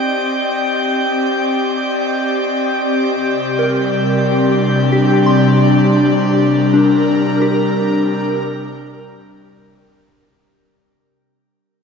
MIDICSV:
0, 0, Header, 1, 4, 480
1, 0, Start_track
1, 0, Tempo, 500000
1, 11357, End_track
2, 0, Start_track
2, 0, Title_t, "Synth texture"
2, 0, Program_c, 0, 99
2, 0, Note_on_c, 0, 79, 69
2, 0, Note_on_c, 0, 91, 65
2, 9893, Note_off_c, 0, 91, 0
2, 9898, Note_off_c, 0, 79, 0
2, 11357, End_track
3, 0, Start_track
3, 0, Title_t, "Synth bell"
3, 0, Program_c, 1, 98
3, 0, Control_c, 1, 64, 127
3, 0, Note_on_c, 1, 67, 68
3, 357, Note_off_c, 1, 67, 0
3, 3000, Control_c, 1, 64, 0
3, 3141, Control_c, 1, 64, 127
3, 3445, Note_on_c, 1, 70, 58
3, 4727, Note_on_c, 1, 67, 52
3, 4906, Note_off_c, 1, 70, 0
3, 5053, Note_on_c, 1, 84, 64
3, 6466, Note_on_c, 1, 62, 66
3, 6973, Note_off_c, 1, 67, 0
3, 7119, Note_on_c, 1, 67, 69
3, 7288, Note_off_c, 1, 62, 0
3, 7301, Note_off_c, 1, 84, 0
3, 9362, Note_off_c, 1, 67, 0
3, 9878, Control_c, 1, 64, 0
3, 11357, End_track
4, 0, Start_track
4, 0, Title_t, "Analog synth pad"
4, 0, Program_c, 2, 89
4, 0, Note_on_c, 2, 60, 67
4, 0, Note_on_c, 2, 67, 67
4, 0, Note_on_c, 2, 74, 63
4, 0, Note_on_c, 2, 75, 67
4, 2992, Note_off_c, 2, 75, 0
4, 3006, Note_on_c, 2, 48, 71
4, 3348, Note_on_c, 2, 55, 68
4, 4228, Note_on_c, 2, 62, 62
4, 5021, Note_off_c, 2, 60, 0
4, 5484, Note_off_c, 2, 74, 0
4, 6079, Note_on_c, 2, 70, 72
4, 9864, Note_off_c, 2, 70, 0
4, 9865, Note_off_c, 2, 62, 0
4, 9866, Note_off_c, 2, 55, 0
4, 9874, Note_off_c, 2, 67, 0
4, 9875, Note_off_c, 2, 48, 0
4, 11357, End_track
0, 0, End_of_file